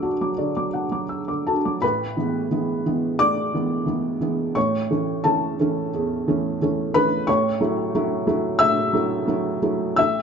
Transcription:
0.00 0.34 A2 soft
0.00 0.13 D3 soft
0.00 0.21 F#3 soft
0.00 0.02 D4 soft
0.00 0.31 D4 soft
0.00 0.31 F#4 soft
0.00 0.38 D5 soft
0.00 0.73 F#5 soft
0.00 0.21 D6 soft
0.00 1.09 E6 soft
0.21 0.49 F#3 soft
0.21 0.50 D6 soft
0.38 0.67 D3 soft
0.38 0.67 D5 soft
0.57 0.85 F#3 soft
0.57 0.85 D6 soft
0.73 1.03 D4 soft
0.73 1.03 F#5 soft
0.91 1.50 F#3 soft
0.91 1.21 D6 soft
1.09 1.28 E6 soft
1.28 1.58 D3 soft
1.28 1.58 D6 soft
1.47 1.76 D4 soft
1.47 1.76 F#4 soft
1.47 1.80 A4 soft
1.47 1.82 A5 medium
1.65 1.83 F#3 soft
1.65 1.83 D6 soft
1.82 2.16 A1 soft
1.82 2.16 A2 medium
1.82 3.16 B4 medium
1.82 3.19 B5 medium
2.17 2.48 E3 soft
2.17 2.48 G#3 soft
2.17 2.48 B3 soft
2.51 2.82 E3 soft
2.51 2.83 G#3 soft
2.51 2.82 B3 soft
2.86 3.17 E3 soft
2.86 3.17 G#3 soft
2.86 3.17 B3 soft
3.19 3.53 A2 soft
3.19 4.51 D5 medium
3.19 4.55 D6 loud
3.54 3.84 E3 soft
3.54 3.85 G#3 soft
3.54 3.85 B3 soft
3.86 4.17 E3 soft
3.86 4.18 G#3 soft
3.86 4.18 B3 soft
4.21 4.52 E3 soft
4.21 4.52 G#3 soft
4.21 4.53 B3 soft
4.55 4.89 A1 medium
4.55 4.89 A2 medium
4.55 5.21 C#5 medium
4.55 5.24 C#6 medium
4.91 5.21 E3 soft
4.91 5.21 A3 soft
4.91 5.22 C#4 soft
5.24 5.56 E3 soft
5.24 5.56 A3 soft
5.24 5.56 C#4 medium
5.24 6.56 A4 medium
5.24 6.60 A5 medium
5.60 5.90 E3 soft
5.60 5.90 A3 soft
5.60 5.90 C#4 medium
5.94 6.26 E2 medium
6.28 6.57 E3 medium
6.28 6.58 A3 medium
6.28 6.58 C#4 medium
6.62 6.91 E3 medium
6.62 6.92 A3 medium
6.62 6.92 C#4 medium
6.94 7.25 E3 medium
6.94 7.25 A3 soft
6.94 7.25 C#4 medium
6.94 7.25 B4 medium
6.94 7.27 B5 loud
7.27 7.59 A1 medium
7.27 7.59 A2 medium
7.27 8.57 C#5 medium
7.27 8.60 C#6 medium
7.60 7.90 F#3 medium
7.60 7.91 A3 medium
7.60 7.90 E4 medium
7.95 8.24 F#3 medium
7.95 8.24 A3 medium
7.95 8.24 E4 medium
8.27 8.57 F#3 medium
8.27 8.57 A3 medium
8.27 8.57 E4 medium
8.59 8.93 A2 medium
8.59 9.94 E5 medium
8.59 9.95 E6 loud
8.93 9.24 F#3 medium
8.93 9.25 A3 medium
8.93 9.25 E4 medium
9.27 9.59 F#3 medium
9.27 9.59 A3 soft
9.27 9.59 E4 medium
9.62 9.94 F#3 soft
9.62 9.94 A3 soft
9.62 9.94 E4 medium
9.96 10.22 A1 medium
9.96 10.22 A2 medium
9.96 10.22 E5 medium
9.96 10.22 E6 medium

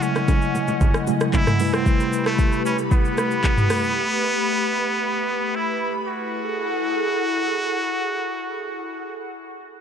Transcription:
0.00 1.04 C#3 medium
0.00 1.05 F#3 medium
0.00 1.05 G#3 medium
0.00 1.05 A3 medium
0.00 1.07 C#4 medium
0.00 1.05 E4 medium
0.00 1.58 D#5 medium
0.00 1.56 F#5 medium
0.00 1.56 G#5 medium
0.00 shaker loud
0.16 cross-stick medium
0.16 high bongo medium
0.16 shaker soft
0.28 kick loud
0.28 high bongo medium
0.28 shaker medium
0.42 shaker medium
0.55 low bongo medium
0.55 shaker medium
0.68 low bongo medium
0.68 shaker medium
0.81 kick loud
0.81 low conga medium
0.81 shaker medium
0.94 cross-stick loud
0.94 shaker medium
1.07 1.60 C#3 medium
1.07 1.60 F#3 medium
1.07 1.60 G#3 medium
1.07 1.59 A3 medium
1.07 1.60 E4 medium
1.07 low bongo medium
1.07 shaker medium
1.21 cross-stick loud
1.21 shaker medium
1.33 1.75 E4 loud
1.33 kick medium
1.33 clap medium
1.33 high bongo medium
1.33 low conga medium
1.33 shaker medium
1.47 cross-stick loud
1.47 mid tom loud
1.47 shaker medium
1.59 3.66 C3 medium
1.59 3.66 G3 medium
1.59 6.03 A3 medium
1.59 3.67 A3 medium
1.59 3.67 E4 medium
1.59 6.03 G4 medium
1.59 6.03 B4 medium
1.59 3.67 B4 medium
1.59 6.03 B5 medium
1.59 open hi-hat medium
1.59 high bongo medium
1.59 shaker loud
1.73 2.26 C4 loud
1.73 cross-stick loud
1.73 shaker medium
1.86 kick loud
1.86 shaker medium
2.00 shaker medium
2.13 shaker loud
2.26 2.63 A3 medium
2.26 cross-stick loud
2.26 shaker soft
2.39 kick loud
2.39 shaker medium
2.52 shaker medium
2.66 2.77 C#4 medium
2.66 shaker loud
2.78 shaker medium
2.91 5.57 B3 loud
2.91 kick loud
2.91 shaker medium
3.05 shaker medium
3.18 cross-stick loud
3.18 shaker medium
3.31 shaker medium
3.44 kick medium
3.44 clap medium
3.44 shaker medium
3.58 mid tom loud
3.58 shaker medium
3.70 cross-stick loud
3.70 open hi-hat medium
3.70 shaker loud
3.84 shaker medium
5.55 5.95 E4 medium
6.07 9.20 E4 medium
6.07 9.20 F#4 loud
6.07 9.20 G#4 medium
6.07 9.20 A4 medium
6.07 9.20 F#5 medium

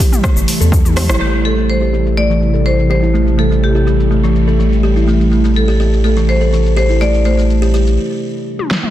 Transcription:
0.00 1.17 C3 medium
0.00 1.17 E3 medium
0.00 1.17 G3 medium
0.00 1.17 A3 medium
0.00 1.17 E4 medium
0.00 cabasa medium
0.12 mid tom medium
0.12 cabasa medium
0.23 0.36 A3 medium
0.23 kick loud
0.23 cross-stick medium
0.23 cabasa medium
0.36 0.44 G1 medium
0.36 0.47 E3 loud
0.36 cabasa medium
0.48 open hi-hat medium
0.48 cabasa medium
0.61 1.10 E2 medium
0.61 0.67 A4 medium
0.61 cabasa soft
0.72 0.84 E3 medium
0.72 kick loud
0.72 cabasa medium
0.85 high tom soft
0.85 cabasa medium
0.96 1.03 G4 loud
0.96 cross-stick medium
0.96 mid tom medium
0.96 open hi-hat medium
0.96 mid tom medium
0.96 cabasa medium
1.09 1.16 A1 medium
1.09 1.20 E4 medium
1.09 cross-stick medium
1.09 mid tom medium
1.09 cabasa soft
1.20 7.98 A1 medium
1.20 7.94 C3 medium
1.20 7.94 E3 medium
1.20 7.94 G3 medium
1.20 7.94 A3 medium
1.20 1.33 A3 medium
1.20 5.04 E4 medium
1.20 1.46 G4 medium
1.20 crash medium
1.20 cabasa medium
1.34 cabasa soft
1.45 1.52 A3 medium
1.45 1.70 A4 medium
1.45 cabasa soft
1.58 1.68 A3 medium
1.58 cabasa medium
1.70 2.19 C5 medium
1.70 cabasa soft
1.82 1.88 G4 medium
1.82 cabasa soft
1.93 2.00 G4 medium
1.93 cabasa medium
2.07 cabasa soft
2.17 2.29 A3 medium
2.17 2.67 D5 loud
2.17 cabasa soft
2.30 2.40 E3 medium
2.30 cabasa medium
2.42 cabasa soft
2.54 2.60 A4 medium
2.54 cabasa soft
2.66 2.78 E3 medium
2.66 2.89 C5 medium
2.66 cabasa medium
2.79 cabasa soft
2.90 2.97 G4 medium
2.90 3.40 C5 loud
2.90 cabasa soft
3.03 3.14 E4 medium
3.03 cabasa soft
3.14 3.26 A3 medium
3.14 cabasa medium
3.27 cabasa soft
3.38 3.45 A3 medium
3.38 3.63 A4 medium
3.38 cabasa soft
3.51 3.61 A3 medium
3.51 cabasa medium
3.63 4.56 G4 medium
3.63 cabasa medium
3.75 3.81 G4 medium
3.75 cabasa soft
3.87 3.93 G4 medium
3.87 cabasa medium
4.00 cabasa soft
4.11 4.23 A3 medium
4.11 cabasa soft
4.24 4.34 E3 medium
4.24 cabasa medium
4.36 cabasa medium
4.48 4.54 A4 medium
4.48 cabasa soft
4.59 4.71 E3 medium
4.59 cabasa medium
4.73 cabasa soft
4.83 4.90 G4 medium
4.83 cabasa soft
4.96 5.07 E4 medium
4.96 cabasa soft
5.07 5.20 A3 medium
5.07 7.95 D4 medium
5.07 cabasa medium
5.21 cabasa soft
5.32 5.38 A3 medium
5.32 cabasa medium
5.44 5.55 A3 medium
5.44 cabasa medium
5.56 6.03 A4 medium
5.56 cabasa medium
5.68 5.75 G4 medium
5.68 cabasa soft
5.80 5.87 G4 medium
5.80 cabasa medium
5.94 cabasa medium
6.04 6.16 A3 medium
6.04 6.29 A4 medium
6.04 cabasa medium
6.17 6.27 E3 medium
6.17 cabasa medium
6.29 6.76 C5 medium
6.29 cabasa medium
6.41 6.47 A4 medium
6.41 cabasa soft
6.53 6.65 E3 medium
6.53 cabasa medium
6.66 cabasa medium
6.77 6.84 G4 medium
6.77 7.02 C5 medium
6.77 cabasa medium
6.89 7.00 E4 medium
6.89 cabasa soft
7.01 7.13 A3 medium
7.01 7.24 D5 loud
7.01 cabasa medium
7.14 cabasa soft
7.25 7.32 A3 medium
7.25 8.67 C5 medium
7.25 cabasa medium
7.37 7.48 A3 medium
7.37 cabasa medium
7.50 cabasa soft
7.62 7.68 G4 medium
7.62 cabasa soft
7.74 7.81 G4 medium
7.74 cabasa medium
7.87 cabasa medium
8.59 high tom soft
8.71 snare medium
8.83 mid tom medium

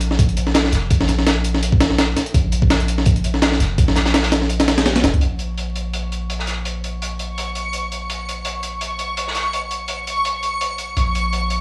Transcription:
0.00 0.71 A#1 loud
0.00 closed hi-hat medium
0.11 snare soft
0.19 kick loud
0.19 closed hi-hat loud
0.29 closed hi-hat soft
0.37 closed hi-hat medium
0.47 snare soft
0.54 snare loud
0.54 closed hi-hat medium
0.64 snare soft
0.72 0.89 F1 loud
0.72 snare soft
0.72 closed hi-hat medium
0.90 2.15 A#1 loud
0.90 kick loud
0.90 closed hi-hat medium
1.01 snare medium
1.08 snare medium
1.08 closed hi-hat medium
1.19 snare soft
1.26 snare loud
1.26 closed hi-hat medium
1.44 closed hi-hat medium
1.54 snare soft
1.62 closed hi-hat loud
1.62 closed hi-hat medium
1.72 kick medium
1.80 snare loud
1.80 closed hi-hat medium
1.90 snare soft
1.98 snare loud
1.98 closed hi-hat medium
2.16 snare medium
2.16 closed hi-hat medium
2.26 closed hi-hat soft
2.34 3.59 A#1 loud
2.34 kick loud
2.34 closed hi-hat medium
2.52 closed hi-hat medium
2.62 kick loud
2.70 snare loud
2.70 closed hi-hat medium
2.80 closed hi-hat soft
2.88 closed hi-hat medium
2.98 snare soft
3.06 kick loud
3.06 closed hi-hat loud
3.06 closed hi-hat medium
3.16 closed hi-hat soft
3.24 closed hi-hat medium
3.34 snare soft
3.42 snare loud
3.42 closed hi-hat medium
3.52 snare soft
3.60 3.76 F1 loud
3.60 snare soft
3.60 closed hi-hat medium
3.78 5.03 A#1 medium
3.78 kick loud
3.78 closed hi-hat medium
3.88 snare medium
3.96 snare loud
3.96 snare soft
3.96 closed hi-hat medium
4.06 snare loud
4.06 snare soft
4.06 closed hi-hat medium
4.14 snare loud
4.14 closed hi-hat medium
4.23 snare loud
4.23 closed hi-hat medium
4.32 snare loud
4.32 closed hi-hat medium
4.42 snare soft
4.49 closed hi-hat medium
4.60 snare loud
4.60 closed hi-hat medium
4.68 snare loud
4.68 closed hi-hat medium
4.78 snare loud
4.78 closed hi-hat medium
4.85 snare loud
4.85 closed hi-hat medium
4.96 snare loud
4.96 closed hi-hat medium
5.04 5.13 F1 loud
5.04 snare loud
5.04 closed hi-hat medium
5.14 5.21 C#2 medium
5.14 closed hi-hat soft
5.21 10.95 A#1 medium
5.21 11.61 C#6 medium
5.21 closed hi-hat medium
5.39 closed hi-hat medium
5.58 closed hi-hat medium
5.76 closed hi-hat medium
5.94 closed hi-hat medium
6.12 closed hi-hat medium
6.30 closed hi-hat medium
6.39 snare soft
6.47 snare soft
6.47 closed hi-hat medium
6.65 closed hi-hat medium
6.84 closed hi-hat medium
7.02 closed hi-hat medium
7.19 closed hi-hat medium
7.38 closed hi-hat medium
7.55 closed hi-hat medium
7.73 closed hi-hat medium
7.92 closed hi-hat medium
8.10 closed hi-hat medium
8.29 closed hi-hat medium
8.45 closed hi-hat medium
8.63 closed hi-hat medium
8.81 closed hi-hat medium
8.99 closed hi-hat medium
9.17 closed hi-hat medium
9.28 snare soft
9.35 snare soft
9.35 closed hi-hat medium
9.53 closed hi-hat medium
9.71 closed hi-hat medium
9.88 closed hi-hat medium
10.07 closed hi-hat medium
10.25 closed hi-hat medium
10.43 closed hi-hat medium
10.61 closed hi-hat medium
10.78 closed hi-hat medium
10.97 11.61 A#1 medium
10.97 closed hi-hat medium
11.15 closed hi-hat medium
11.33 closed hi-hat medium
11.50 closed hi-hat medium

